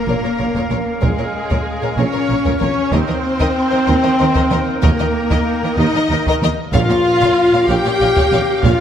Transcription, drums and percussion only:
0.54 taiko medium
1.03 taiko medium
1.51 taiko medium
2.45 taiko medium
2.61 taiko mid medium
2.92 taiko medium
3.40 taiko medium
4.35 taiko medium
4.51 taiko mid medium
4.83 taiko loud
5.31 taiko medium
6.26 taiko medium
6.42 taiko mid medium
6.74 taiko medium
7.22 taiko medium
8.17 taiko medium
8.32 taiko mid medium
8.63 taiko medium

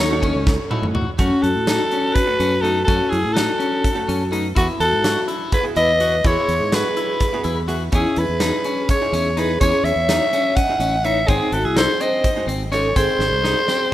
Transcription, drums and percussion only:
0.23 kick medium
0.23 ride medium
0.47 kick loud
0.47 snare medium
0.71 high tom medium
0.83 mid tom medium
0.95 mid tom medium
1.19 kick loud
1.19 closed hi-hat medium
1.44 closed hi-hat medium
1.67 snare loud
1.67 closed hi-hat medium
1.91 closed hi-hat medium
2.16 kick loud
2.16 closed hi-hat medium
2.40 closed hi-hat medium
2.65 closed hi-hat soft
2.88 kick medium
2.88 closed hi-hat medium
3.13 closed hi-hat medium
3.37 snare loud
3.37 closed hi-hat medium
3.60 closed hi-hat medium
3.84 kick loud
3.84 closed hi-hat medium
4.09 closed hi-hat medium
4.33 closed hi-hat medium
4.56 kick loud
4.56 closed hi-hat medium
4.81 closed hi-hat medium
5.04 snare loud
5.04 closed hi-hat medium
5.28 closed hi-hat medium
5.52 kick loud
5.52 closed hi-hat medium
5.76 closed hi-hat medium
6.00 closed hi-hat medium
6.24 kick loud
6.24 closed hi-hat medium
6.49 closed hi-hat medium
6.72 snare loud
6.72 closed hi-hat medium
6.97 closed hi-hat medium
7.20 kick loud
7.20 snare soft
7.20 closed hi-hat medium
7.44 closed hi-hat medium
7.68 snare soft
7.68 closed hi-hat medium
7.92 kick loud
7.92 closed hi-hat medium
8.16 closed hi-hat medium
8.40 snare loud
8.40 closed hi-hat medium
8.64 closed hi-hat medium
8.89 kick loud
8.89 closed hi-hat medium
9.14 closed hi-hat medium
9.37 snare soft
9.37 closed hi-hat medium
9.61 kick loud
9.61 closed hi-hat medium
9.85 closed hi-hat medium
10.09 snare loud
10.09 closed hi-hat medium
10.33 snare soft
10.33 closed hi-hat medium
10.57 kick loud
10.57 closed hi-hat medium
10.80 closed hi-hat medium
11.04 closed hi-hat medium
11.28 kick loud
11.28 closed hi-hat medium
11.52 closed hi-hat medium
11.77 snare loud
11.77 closed hi-hat medium
12.01 closed hi-hat medium
12.24 kick loud
12.24 closed hi-hat medium
12.49 closed hi-hat medium
12.72 snare soft
12.72 closed hi-hat medium
12.96 kick loud
12.96 closed hi-hat medium
13.20 snare medium
13.45 snare medium
13.68 snare medium

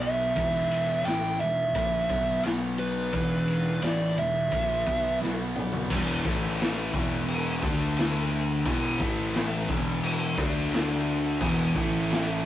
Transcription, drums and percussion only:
0.02 ride medium
0.36 kick loud
0.36 ride loud
0.71 ride medium
1.05 snare loud
1.05 ride loud
1.40 ride medium
1.75 kick loud
1.75 ride medium
2.10 kick loud
2.10 ride medium
2.43 snare loud
2.43 ride medium
2.78 ride medium
3.13 kick loud
3.13 ride loud
3.48 ride medium
3.82 snare loud
3.82 ride loud
4.18 ride medium
4.52 kick loud
4.52 ride medium
4.86 kick loud
4.86 ride medium
5.24 snare medium
5.56 mid tom medium
5.73 floor tom medium
5.90 kick loud
5.90 crash loud
5.90 crash medium
6.25 kick loud
6.59 snare loud
6.59 crash medium
6.94 kick loud
7.28 crash medium
7.63 kick loud
7.97 snare loud
7.97 crash medium
8.65 kick loud
8.65 crash medium
9.00 kick loud
9.33 snare loud
9.33 crash medium
9.69 kick loud
10.03 crash medium
10.38 kick loud
10.72 snare loud
10.72 crash medium
11.40 kick loud
11.40 crash medium
11.75 kick loud
12.10 snare loud
12.10 crash medium

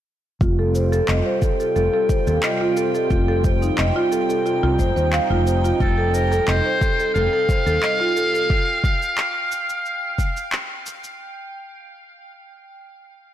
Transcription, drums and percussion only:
0.41 kick loud
0.41 cabasa soft
0.75 cabasa medium
0.93 cabasa soft
1.08 clap loud
1.08 cabasa soft
1.42 kick loud
1.42 cabasa medium
1.60 cabasa soft
1.76 cabasa soft
2.09 kick medium
2.09 cabasa medium
2.27 cabasa soft
2.43 clap loud
2.43 cabasa soft
2.77 cabasa medium
2.95 cabasa soft
3.11 kick loud
3.11 cabasa soft
3.44 kick loud
3.44 cabasa medium
3.62 cabasa soft
3.78 clap loud
3.78 cabasa soft
4.12 cabasa medium
4.30 cabasa soft
4.46 cabasa soft
4.79 kick medium
4.79 cabasa medium
4.97 cabasa soft
5.13 clap loud
5.13 cabasa soft
5.47 cabasa medium
5.65 cabasa soft
5.80 kick loud
5.80 cabasa soft
6.14 cabasa medium
6.32 cabasa soft
6.48 clap loud
6.48 cabasa soft
6.81 kick loud
6.81 cabasa medium
6.99 cabasa soft
7.15 cabasa soft
7.49 kick loud
7.49 cabasa medium
7.67 cabasa soft
7.83 clap medium
7.83 cabasa soft
8.17 cabasa medium
8.35 cabasa soft
8.50 kick loud
8.50 cabasa soft
8.84 kick loud
8.84 cabasa medium
9.02 cabasa soft
9.18 clap loud
9.18 cabasa soft
9.52 cabasa medium
9.70 cabasa soft
9.86 cabasa soft
10.19 kick medium
10.19 cabasa medium
10.37 cabasa soft
10.52 clap loud
10.52 cabasa soft
10.86 cabasa medium
11.04 cabasa soft

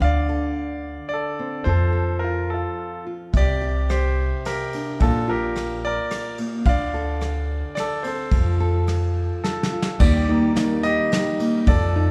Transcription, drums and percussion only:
3.34 kick medium
3.34 ride soft
3.89 cross-stick medium
3.89 ride soft
4.45 cross-stick medium
4.45 ride soft
4.73 ride soft
5.00 kick medium
5.00 ride soft
5.55 cross-stick medium
5.55 ride soft
6.10 cross-stick medium
6.10 ride soft
6.38 ride soft
6.65 kick medium
6.65 ride soft
7.21 cross-stick medium
7.21 ride soft
7.76 cross-stick medium
7.76 ride soft
8.04 ride soft
8.32 kick medium
8.32 ride soft
8.87 cross-stick medium
8.87 ride soft
9.44 snare soft
9.63 snare soft
9.82 snare medium
10.00 kick medium
10.00 crash medium
10.56 snare medium
10.56 ride soft
11.12 snare medium
11.12 ride soft
11.40 ride soft
11.67 kick medium
11.67 ride soft

